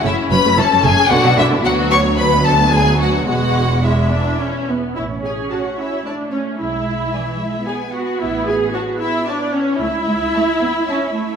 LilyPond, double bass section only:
\new Staff \with { instrumentName = "Double bass section" } { \clef bass \time 3/4 \key a \major \tempo 4 = 112 fis,,16 r16 fis,,16 r16 fis,,16 r16 fis,,16 r16 b,,16 r16 b,,16 r16 | d,2. | e,,2~ e,,8 r8 | a,,4 r2 |
b,,4 r2 | a,,4 r2 | cis,4 r2 | }